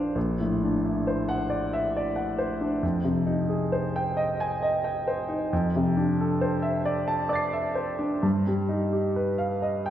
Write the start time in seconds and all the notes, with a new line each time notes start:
Already playing: A#1 D4 F4 C5 D5 F5
0.15 A#1
0.40 A2
0.63 D4
0.86 E4
1.07 C5
1.29 F#5
1.50 D5
1.73 E5
1.97 D5
2.16 F#5
2.38 C5
2.61 D4
2.83 F2
3.04 C3
3.27 D#4
3.49 G#4
3.72 C5
3.96 G5
4.17 D#5
4.40 G#5
4.63 D#5
4.84 G5
5.07 C5
5.28 D#4
5.53 F2
5.76 C3
5.97 D4
6.21 A4
6.41 C5
6.62 E5
6.85 D5
7.08 A5
7.29 D5 D6 A6
7.35 C7
7.53 E5
7.75 C5
7.99 D4
8.23 G2
8.47 G3
8.69 D#4
8.93 G4
9.16 B4
9.38 F5
9.62 D#5
9.86 G5